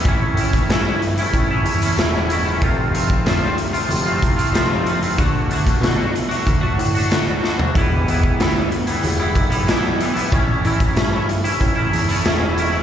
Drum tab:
HH |x-xxx-xxx-xxx-x-|x-x-x-xxx-xxx-xx|x-xxx-xxx-xxx---|x-x-x-xxx-xxx-xx|
SD |----o-------o---|----o-------o---|---oo-------o-o-|----o-------o---|
FT |----------------|----------------|---------------o|----------------|
BD |o--o----o-------|o--o------o-----|o--o----o-------|o--o------o-----|

HH |x-xxx-xxx-xxx-x-|
SD |----o-------o---|
FT |----------------|
BD |o--o----o-------|